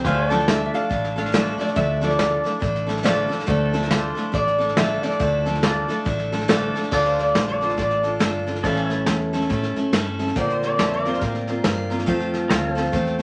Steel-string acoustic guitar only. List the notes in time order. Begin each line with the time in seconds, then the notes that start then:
0.05 D3 F3 A3 D4 E4 A4
0.30 D3 F3 A3 D4 E4 A4
0.74 A3 D4 E4 A4
0.90 A3 D4 E4 A4
1.16 A3 D4 E4 A4
1.32 D3 F3 A3 D4 E4 A4
1.58 A3 D4 E4 A4
1.75 D3 F3 A3 D4 E4 A4
2.01 D3 F3 A3 D4 E4 A4
2.44 A3 D4 E4 A4
2.60 A3 D4 E4 A4
2.87 A3 D4 E4 A4
3.03 D3 F3 A3 D4 E4 A4
3.28 A3 D4 E4 A4
3.46 D3 F3 A3 D4 E4 A4
3.73 D3 F3 A3 D4 E4 A4
4.15 A3 D4 E4 A4
4.32 A3 D4 E4 A4
4.58 A3 D4 E4 A4
4.77 D3 F3 A3 D4 E4 A4
5.03 A3 D4 E4 A4
5.19 D3 F3 A3 D4 E4 A4
5.45 D3 F3 A3 D4 E4 A4
5.88 A3 D4 E4 A4
6.05 A3 D4 E4 A4
6.32 A3 D4 E4 A4
6.48 D3 F3 A3 D4 E4 A4
6.75 A3 D4 E4 A4
6.92 D3 A3 D4 F4 A4
7.61 D4 F4 A4
7.77 A3 D4 F4 A4
8.03 D4 F4 A4
8.19 A3 D4 F4 A4
8.46 D4 F4 A4
8.64 A2 E3 A3 C#4 E4 A4
9.33 A3 C#4 E4 A4
9.49 A3 C#4 E4 A4
9.76 A3 C#4 E4 A4
9.92 A3 C#4 E4 A4
10.19 A3 C#4 E4 A4
10.36 A#2 D3 A#3 C4 F4 A#4
11.05 A#3 C4 F4 A#4
11.21 A#3 C4 F4 A#4
11.47 A#3 C4 F4 A#4
11.64 A#3 C4 F4 A#4
11.90 A#3 C4 F4 A#4
12.06 F3 A3 C4 F4 A4
12.75 C4 F4 A4
12.92 A3 C4 F4 A4
13.19 A4